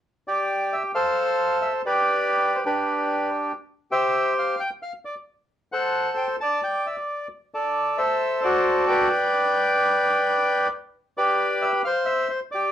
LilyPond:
\new Staff \with { instrumentName = "Bandoneon" } { \time 4/4 \key g \mixolydian \tempo 4 = 132 << { r8 d''4 e''8 f''4. e''8 | d''4. c''16 b'4. r8. | r8 e''4 f''8 g''8 f''8 d''8 r8 | r8 fis''4 g''8 a''8 g''8 e''8 r8 |
r8 d''4 e''4 d''4 g''8~ | g''2.~ g''8 r8 | r8 d''4 e''8 f''8 e''8 c''8 d''8 | } \\ { r8 g'4. <a' c''>2 | <g' b'>4.~ <g' b'>16 <d' g'>2 r16 | r8 <g' c''>4. r2 | r8 <a' c''>4. d''2 |
r8 a'4 <a' c''>4 <fis' a'>4 <b' d''>8~ | <b' d''>2.~ <b' d''>8 r8 | r8 <g' b'>4. c''4. g'8 | } >> }